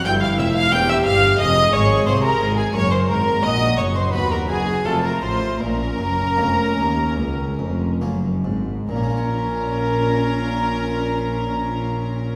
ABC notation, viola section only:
X:1
M:4/4
L:1/8
Q:1/4=79
K:Bbm
V:1 name="Viola section"
=E2 =G2 A4 | B2 G2 ^F2 =F2 | D6- D z | D8 |]